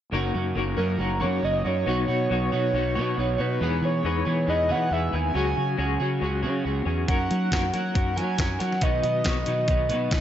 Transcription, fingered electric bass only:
0.12 0.30 F#1 medium
0.34 0.52 F#2 medium
0.56 0.74 F#1 medium
0.77 0.95 F#2 medium
0.99 1.22 F#1 medium
1.21 1.39 F#2 medium
1.43 1.61 F#1 medium
1.65 1.83 F#2 medium
1.86 2.05 B1 medium
2.08 2.26 B2 medium
2.31 2.48 B1 medium
2.53 2.71 B2 medium
2.73 2.97 B1 medium
2.95 3.13 B2 medium
3.18 3.35 B1 medium
3.39 3.57 B2 medium
3.61 3.79 E2 medium
3.82 4.00 E3 medium
4.04 4.22 E2 medium
4.26 4.44 E3 medium
4.48 4.71 E2 medium
4.70 4.88 E3 medium
4.91 5.09 E2 medium
5.13 5.31 D#2 medium
5.35 5.53 C#2 medium
5.57 5.75 C#3 medium
5.78 5.96 C#2 medium
6.00 6.18 C#3 medium
6.21 6.45 C#2 medium
6.43 6.61 C#3 medium
6.65 6.83 C#2 medium
6.86 7.04 E2 medium
7.09 7.27 F#2 medium
7.31 7.49 F#3 medium
7.52 7.70 F#2 medium
7.74 7.92 F#3 medium
7.95 8.19 F#2 medium
8.17 8.35 F#3 medium
8.38 8.56 F#2 medium
8.61 8.78 F#3 medium
8.82 9.00 B1 medium
9.04 9.21 B2 medium
9.25 9.43 B1 medium
9.47 9.65 B2 medium
9.68 9.91 B1 loud
9.89 10.07 B2 medium
10.12 10.21 B1 medium

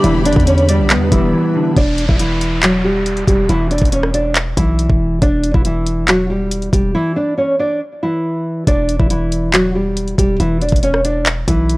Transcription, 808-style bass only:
0.04 0.27 E1 loud
0.25 0.36 F#1 loud
0.36 0.81 E2 loud
0.79 0.97 B1 loud
0.96 1.11 E2 loud
1.12 1.33 E1 loud
1.77 2.08 E1 loud
2.09 3.24 E1 loud
3.28 3.48 E1 loud
3.49 3.80 E1 loud
3.82 4.54 E1 loud
4.57 4.88 B1 loud
4.90 5.21 E1 loud
5.22 5.53 E1 loud
5.54 6.69 E1 loud
6.73 6.94 E1 loud
8.67 8.98 E1 loud
9.00 10.14 E1 loud
10.18 10.39 E1 loud
10.40 10.71 E1 loud
10.72 11.45 E1 loud
11.48 11.77 B1 loud

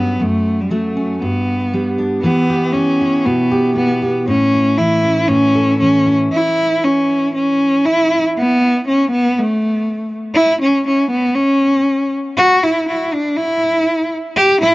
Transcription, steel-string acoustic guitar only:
0.00 0.19 G2 soft
0.00 0.18 F#3 medium
0.00 0.18 C#4 soft
0.00 2.24 F#4 medium
0.20 1.22 F#2 medium
0.71 1.19 F#3 medium
0.71 1.22 A3 medium
0.97 1.22 C#4 soft
1.22 2.21 G2 medium
1.74 2.21 G3 soft
1.74 2.22 B3 soft
1.98 2.21 D4 soft
2.23 4.77 E3 medium
2.23 2.73 B3 soft
2.23 3.01 E4 medium
2.23 2.49 G4 medium
2.50 3.50 G4 medium
2.74 3.74 B3 medium
3.01 4.54 E4 medium
3.26 4.28 B2 medium
3.51 4.01 G4 medium
3.76 4.24 B3 medium
4.02 4.25 G4 medium
4.28 5.28 A2 medium
4.54 6.05 E4 soft
4.78 5.79 E3 medium
5.04 6.28 C#4 medium
5.29 6.28 A2 medium
5.55 6.28 A4 medium
5.81 8.34 E3 medium
6.06 6.28 E4 medium

